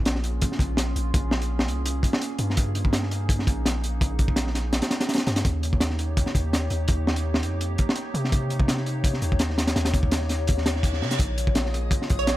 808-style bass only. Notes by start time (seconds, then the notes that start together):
Already playing: A#1
0.59 A#1
0.96 A#1
1.14 A#1
1.68 C2
2.39 G2
3.47 A#1
4.01 A#1
5.27 G2
5.45 D#2
6.35 D#2
6.71 D#2
6.88 D#2
7.43 F2
8.14 C3
9.22 D#2
9.76 D#2
10.49 D#2
11.02 C3
11.19 A#1
12.10 A#1